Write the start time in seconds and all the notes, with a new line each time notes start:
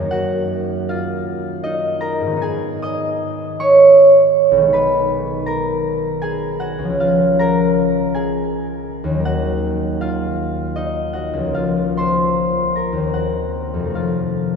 Already playing: F#2 D#3 F#3 F#4 G#4 A#4 D#5 G#5 A#5
0.00 A#3
0.05 D#4
0.11 F#4 F#5
0.89 F4 F5
1.64 D#4 D#5
2.01 A#4 A#5
2.21 G#2
2.26 D#3
2.31 B3
2.36 D#4
2.42 G#4 G#5
2.82 D#5 D#6
3.60 C#5 C#6
4.51 B1
4.57 D#3
4.62 G#3
4.68 D#4
4.73 B4 B5
5.46 A#4 A#5
6.22 G#4 G#5
6.60 F#4 F#5
6.78 C#2
6.84 F3
6.89 C#4
7.00 F4 F5
7.39 A#4 A#5
8.14 G#4 G#5
9.04 D#2
9.09 D#3
9.14 F#3
9.20 A#3
9.25 F#4 F#5
10.01 F4 F5
10.76 D#4 D#5
11.13 F#4 F#5
11.33 C#2
11.39 F3
11.44 A#3
11.54 F4 F5
11.97 C5 C6
12.76 A#4 A#5
12.92 D#2
12.97 D#3
13.03 A#3
13.08 C4
13.14 F#4 F#5
13.74 F2
13.79 C3
13.85 A3
13.90 C4
13.95 F4 F5